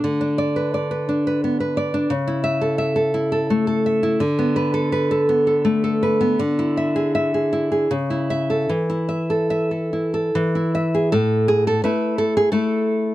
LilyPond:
\new Staff \with { instrumentName = "Nylon-string guitar" } { \time 3/4 \key a \major \tempo 4 = 84 << { r2. | r2. | r2. | r2. |
r2. | a'8 gis'16 a'16 b'8 a'16 gis'16 a'4 | } \\ { d16 d'16 d''16 b'16 d''16 b'16 d'16 b'16 b16 b'16 d''16 d'16 | cis16 e'16 e''16 a'16 e''16 a'16 e'16 a'16 a16 a'16 e''16 e'16 | d16 b16 b'16 a'16 b'16 a'16 b16 a'16 a16 a'16 b'16 b16 | d16 e'16 e''16 gis'16 e''16 gis'16 e'16 gis'16 cis16 e'16 e''16 a'16 |
e16 e'16 e''16 a'16 e''16 a'16 e'16 a'16 e16 e'16 e''16 gis'16 | a,4 <a e'>4 <a e'>4 | } >> }